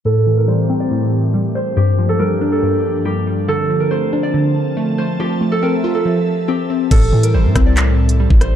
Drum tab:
CC |----------------|----------------|----------------|----------------|
HH |----------------|----------------|----------------|----------------|
CP |----------------|----------------|----------------|----------------|
SD |----------------|----------------|----------------|----------------|
BD |----------------|----------------|----------------|----------------|

CC |x---------------|
HH |x--x--x-x--x--x-|
CP |--------x-------|
SD |------r-------r-|
BD |o-----o------o--|